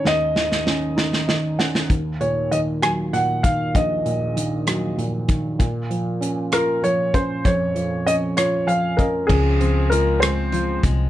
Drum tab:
CC |------------|------------|------------|------------|
HH |------------|x-x-x-x-x-x-|x-x-x-x-x-x-|x-x-x-x-x-x-|
SD |o-ooo-ooo-oo|------r-r---|------r-----|------r-----|
BD |------------|o---------o-|o---------o-|o---------o-|

CC |------------|x-----------|
HH |x-x-x-x-x-x-|--x-x-x-x-x-|
SD |------r-----|------r-----|
BD |o---------o-|o---------o-|